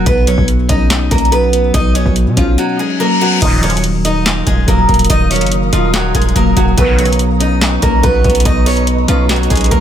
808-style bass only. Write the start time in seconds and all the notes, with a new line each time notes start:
0.06 B1
0.38 B1
0.69 B1
1.11 B1
1.74 B1
2.06 B1
2.27 B2
2.37 B1
3.42 D#1
4.47 D#1
4.68 D#1
4.89 D#1
5.10 D#1
5.41 F#1
5.73 D#1
6.15 D#1
6.36 D#1
6.57 D#1
6.78 B1
7.82 B1
8.03 B1
8.24 B1
8.45 B1
9.08 B1
9.50 B1
9.71 B1